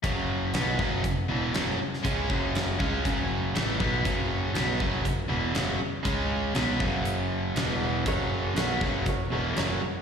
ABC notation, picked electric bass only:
X:1
M:4/4
L:1/8
Q:1/4=120
K:F#
V:1 name="Picked electric bass" clef=bass
F,,,2 B,,, F,,, F,,, =E,,, F,,, z | C,, F,,,2 C,, F,,,2 =A,,, B,,, | F,,,2 B,,, F,,, F,,, =E,,, F,,, z | C,,2 B,,, F,,,3 =E,,,2 |
F,,,2 B,,, F,,, F,,, =E,,, F,,, z |]